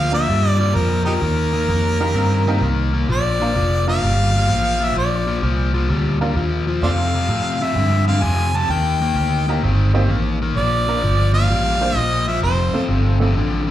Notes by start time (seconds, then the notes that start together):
Already playing: D2 A#2 F3
0.12 A#2 F3 A#3 D4 F4 A#4 E5
0.29 G2 A#2 G3
0.49 D5
0.60 A#2 G3 D5
0.75 F2 A#2 F3 A#4
1.05 A#2 F3 D#4 G4 A#4
1.22 D#2 D#3 A#3
1.53 D#3 A#3
1.68 F2 D#3 A#3
2.00 D#3 A#3 D#4 G4 A#4
2.14 G2 D#3 C4
2.47 D#3 A#3 C4 D#4 G4 A#4
2.61 C2 D#3 A#3
2.94 D#3 A#3
3.09 A#1 A#2 F3 D5
3.40 A#2 F3 A#3 D4 F4 A#4
3.56 F1 A#2 F3
3.87 A#2 F3 A#3 D4 F4 A#4 F5
4.02 G1 A#2 G3
4.34 A#2 G3
4.48 A1 A#2 F3
4.80 A#2 F3 E5
4.95 A#1 A#2 F3 D5
5.27 A#2 F3
5.43 C2 A#2 F3
5.74 A#2 F3
5.90 D2 A#2 G3
6.21 A#2 G3 A#3 D4 F4 A#4
6.35 D#2 A#2 F3
6.67 A#2 F3
6.83 F2 C3 A3 C4 F4 A4 C5 D5 F5
7.14 F2 C3
7.29 F2 A2 C3
7.61 F2 C3 E5
7.76 F2 G2 D3
8.08 F2 D3 F5
8.22 F2 C3 G#5
8.55 F2 C3 A5
8.69 D#2 D#3 A#3 G5
9.01 D#3 A#3
9.15 D2 D#3 A#3
9.48 D#3 A#3 D#4 G4 A#4
9.63 G1 D#3 C4
9.93 D#3 A#3 C4 D#4 G4 C5
10.09 A1 D#3 A#3
10.42 D#3 A#3
10.56 A#1 A#2 F3 D5
10.88 A#2 F3 A#3 D4 F4 A#4
11.03 G1 A#2 F3
11.34 A#2 F3 F5
11.48 A1 A#2 G3
11.81 A#2 G3 A#3 D4 F4 C5
11.96 A#1 A#2 F3 D#5
12.27 A#2 F3 E5
12.41 F1 F2 C3 C5
12.73 F2 C3 A3 C4 F4 A4, muted fingered electric bass stroke
12.88 G1 F2 C3
13.20 F2 C3 A3 C4 F4 A4
13.36 A1 F2 D3
13.67 F2 D3